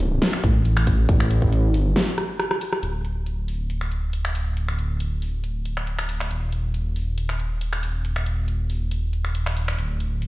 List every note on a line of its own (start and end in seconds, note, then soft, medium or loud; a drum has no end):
0.00 0.20 A1 loud
0.00 open hi-hat medium
0.22 snare loud
0.22 closed hi-hat medium
0.33 finger snap medium
0.44 1.07 A1 loud
0.44 kick loud
0.44 closed hi-hat medium
0.65 closed hi-hat medium
0.77 finger snap medium
0.87 kick medium
0.87 open hi-hat loud
1.09 1.69 A1 medium
1.09 kick loud
1.09 closed hi-hat medium
1.20 finger snap medium
1.31 closed hi-hat medium
1.42 kick medium
1.53 closed hi-hat medium
1.69 1.94 G#1 medium
1.74 open hi-hat medium
1.96 snare loud
1.96 closed hi-hat medium
2.18 cross-stick medium
2.18 closed hi-hat medium
2.40 cross-stick medium
2.40 closed hi-hat medium
2.51 cross-stick medium
2.61 open hi-hat loud
2.73 cross-stick medium
2.83 6.29 D1 medium
2.83 closed hi-hat medium
3.05 closed hi-hat soft
3.26 closed hi-hat medium
3.48 open hi-hat medium
3.70 closed hi-hat medium
3.81 finger snap soft
3.92 closed hi-hat soft
4.13 closed hi-hat medium
4.25 finger snap medium
4.35 open hi-hat medium
4.57 closed hi-hat medium
4.69 finger snap soft
4.79 closed hi-hat medium
5.00 closed hi-hat medium
5.22 open hi-hat medium
5.44 closed hi-hat medium
5.65 closed hi-hat soft
5.77 finger snap soft
5.87 closed hi-hat medium
5.99 finger snap medium
6.09 open hi-hat medium
6.20 finger snap medium
6.31 9.76 D#1 medium
6.31 closed hi-hat medium
6.52 closed hi-hat soft
6.74 closed hi-hat medium
6.96 open hi-hat medium
7.18 closed hi-hat medium
7.29 finger snap soft
7.40 closed hi-hat soft
7.61 closed hi-hat medium
7.73 finger snap medium
7.83 open hi-hat medium
8.05 closed hi-hat medium
8.16 finger snap medium
8.26 closed hi-hat soft
8.48 closed hi-hat medium
8.70 open hi-hat medium
8.91 closed hi-hat medium
9.13 closed hi-hat soft
9.25 finger snap soft
9.35 closed hi-hat medium
9.46 finger snap medium
9.57 open hi-hat medium
9.68 finger snap medium
9.78 10.27 D1 medium
9.78 closed hi-hat medium
10.00 closed hi-hat soft
10.22 closed hi-hat medium